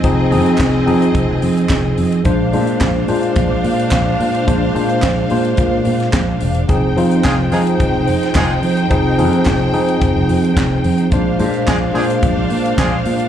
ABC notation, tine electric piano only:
X:1
M:4/4
L:1/8
Q:1/4=108
K:Fdor
V:1 name="Tine electric piano"
[F,CEA] [F,CEA] z [F,CEA]3 z2 | [B,,A,Dc] [B,,A,Dc] z [B,,A,Dc]3 z2 | [B,,A,Dc] [B,,A,Dc] z [B,,A,Dc]3 z2 | [F,CEA] [F,CEF] z [F,CEA]3 z2 |
[F,CEA] [F,CEA] z [F,CEA]3 z2 | [B,,A,Dc] [B,,A,Dc] z [B,,A,Dc]3 z2 |]